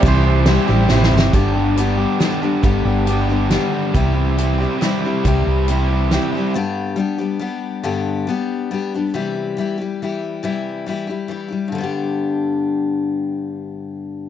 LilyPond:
<<
  \new Staff \with { instrumentName = "Tonewheel organ" } { \time 3/4 \key g \major \tempo 4 = 138 <g' c'' e'' c'''>2. | r2. | r2. | r2. |
r2. | r2. | r2. | r2. |
r2. | r2. | r2. | }
  \new Staff \with { instrumentName = "Pedal steel guitar" } { \time 3/4 \key g \major c''4 r2 | r2. | r2. | r2. |
r2. | r2. | r2. | r2. |
r2. | r2. | r2. | }
  \new Staff \with { instrumentName = "Overdriven electric guitar" } { \time 3/4 \key g \major <c g c' e' g'>8 <c' e' g'>8 <g c' e' g'>8 <c' e' g'>8 <c g c' e' g'>4 | <g, d g b d' g'>8 <g b d' g'>8 <g b d' g'>8 <g b d' g'>8 <g, d g b d' g'>8 <g b d' g'>8 | <g, d g b d' g'>8 <g b d' g'>8 <g b d' g'>8 <g b d' g'>8 <g, d g b d' g'>8 <g b d' g'>8 | <c g c' e' g'>8 <c' e' g'>8 <g c' e' g'>8 <c' e' g'>8 <c g c' e' g'>8 <c' e' g'>8 |
<c g c' e' g'>8 <c' e' g'>8 <g c' e' g'>8 <c' e' g'>8 <c g c' e' g'>8 <c' e' g'>8 | r2. | r2. | r2. |
r2. | r2. | r2. | }
  \new Staff \with { instrumentName = "Steel-string acoustic guitar" } { \time 3/4 \key g \major <c e g e' g'>4 <e g e' g'>8 <g e' g'>8 <e g e' g'>4 | <g, d g b d' g'>4 <g b d' g'>4 <g b d' g'>8 <g b d' g'>8 | <g, d g b d' g'>4 <g b d' g'>8 <g b d' g'>8 <g b d' g'>4 | <c e g e' g'>4 <e g e' g'>8 <g e' g'>8 <e g e' g'>8 <g e' g'>8 |
<c e g e' g'>4 <e g e' g'>4 <e g e' g'>8 <g e' g'>8 | <g, d g b d' g'>4 <g b d' g'>8 <g b d' g'>8 <g b d' g'>4 | <g, d g b d' g'>4 <g b d' g'>4 <g b d' g'>8 <g b d' g'>8 | <c e g e' g'>4 <e g e' g'>8 <g e' g'>8 <e g e' g'>4 |
<c e g e' g'>4 <e g e' g'>8 <g e' g'>8 <e g e' g'>8 <g e' g'>8 | <g, d g b d' g'>2.~ | <g, d g b d' g'>2. | }
  \new Staff \with { instrumentName = "Fingered electric bass" } { \clef bass \time 3/4 \key g \major c,4. a,,8 a,,8 g,,8 | g,,2 r4 | g,,8 g,,2 r8 | c,2 r4 |
c,8 c,2 r8 | r2. | r2. | r2. |
r2. | r2. | r2. | }
  \new DrumStaff \with { instrumentName = "Drums" } \drummode { \time 3/4 <bd cymr>4 <cymr sn>4 \tuplet 3/2 { sn8 sn8 sn8 } | <hh bd>4 hh4 <hh sn>4 | <hh bd>4 hh4 <hh sn>4 | <hh bd>4 hh4 <hh sn>4 |
<hh bd>4 hh4 <hh sn>4 | r4 r4 r4 | r4 r4 r4 | r4 r4 r4 |
r4 r4 r4 | r4 r4 r4 | r4 r4 r4 | }
>>